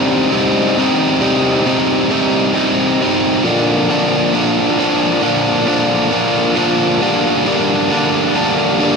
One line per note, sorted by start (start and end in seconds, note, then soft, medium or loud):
0.00 0.30 C3 medium
0.00 0.31 G3 medium
0.00 0.31 C4 loud
0.00 0.32 D#4 loud
0.32 0.77 C3 medium
0.32 0.77 G3 medium
0.32 0.77 C4 medium
0.32 0.78 D#4 loud
0.78 1.20 C3 medium
0.78 1.20 G3 medium
0.78 1.21 C4 medium
0.78 1.22 D#4 loud
1.21 1.65 C3 loud
1.21 1.65 G3 medium
1.21 1.66 C4 medium
1.21 1.67 D#4 loud
1.66 2.09 C3 medium
1.66 2.10 G3 medium
1.66 2.11 C4 loud
1.66 2.11 D#4 medium
2.11 2.54 C3 medium
2.11 2.54 G3 medium
2.11 2.54 C4 loud
2.11 2.55 D#4 medium
2.55 3.00 C3 medium
2.55 3.01 G3 medium
2.55 3.01 C4 medium
2.55 3.02 D#4 medium
3.01 3.42 C3 loud
3.01 3.43 G3 loud
3.01 3.43 C4 loud
3.01 3.43 D#4 loud
3.44 3.88 A#2 medium
3.44 3.89 D3 medium
3.44 3.91 F3 loud
3.44 3.91 A#3 loud
3.44 3.91 D4 loud
3.90 4.32 A#2 medium
3.90 4.33 D3 loud
3.90 4.34 F3 medium
3.90 4.35 A#3 loud
3.90 4.35 D4 loud
4.33 4.77 A#2 loud
4.33 4.78 D3 medium
4.33 4.79 F3 medium
4.33 4.79 A#3 loud
4.33 4.79 D4 loud
4.78 5.20 A#2 medium
4.78 5.21 D3 loud
4.78 5.22 F3 medium
4.78 5.23 A#3 loud
4.78 5.23 D4 loud
5.21 5.65 A#2 loud
5.21 5.66 D3 loud
5.21 5.67 F3 medium
5.21 5.67 A#3 loud
5.21 5.68 D4 loud
5.66 6.10 A#2 medium
5.66 6.10 D3 loud
5.66 6.12 F3 medium
5.66 6.12 A#3 medium
5.66 6.13 D4 loud
6.11 6.54 A#2 medium
6.11 6.55 D3 medium
6.11 6.56 F3 medium
6.11 6.57 A#3 loud
6.11 6.57 D4 medium
6.55 6.98 A#2 loud
6.55 6.99 D3 loud
6.55 7.02 F3 loud
6.55 7.02 A#3 loud
6.55 7.03 D4 loud
7.01 7.45 G2 loud
7.01 7.45 D3 loud
7.01 7.46 G3 loud
7.01 7.46 A#3 loud
7.01 7.47 D4 loud
7.45 7.90 G2 medium
7.45 7.90 D3 medium
7.45 7.91 G3 loud
7.45 7.92 A#3 loud
7.45 7.92 D4 loud
7.91 8.34 G2 loud
7.91 8.34 D3 medium
7.91 8.36 G3 medium
7.91 8.36 A#3 loud
7.91 8.36 D4 loud
8.34 8.79 G2 medium
8.34 8.78 D3 medium
8.34 8.80 G3 medium
8.34 8.80 A#3 medium
8.34 8.81 D4 loud
8.80 8.96 G2 loud
8.80 8.96 D3 loud
8.80 8.96 G3 medium
8.80 8.96 A#3 loud
8.80 8.96 D4 loud